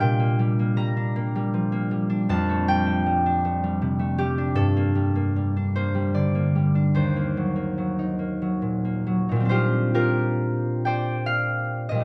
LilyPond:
<<
  \new Staff \with { instrumentName = "Harp" } { \time 6/8 \key bes \major \tempo 4. = 50 <f'' g''>4 bes''2 | a''8 g''2 g'8 | a'4. c''8 d''4 | c''2. |
c''8 bes'4 g''8 f''8. ees''16 | }
  \new Staff \with { instrumentName = "Harp" } { \time 6/8 \key bes \major << { <bes, g bes d' g'>16 bes16 g16 bes16 g16 d'16 bes16 g16 f16 bes16 g16 d'16 | f,16 a16 g16 a16 g16 d'16 a16 g16 c16 a16 g16 d'16 | g,16 bes16 g16 bes16 g16 d'16 bes16 g16 d16 bes16 g16 d'16 | ees,16 bes16 ges16 bes16 ges16 ees'16 bes16 ges16 bes,16 bes16 ges16 ees'16 |
<f' g'>8 <f' g'>4 <c'' d''>4. | } \\ { r2. | r2. | r2. | r2. |
<bes, g c' d'>2. | } >> }
>>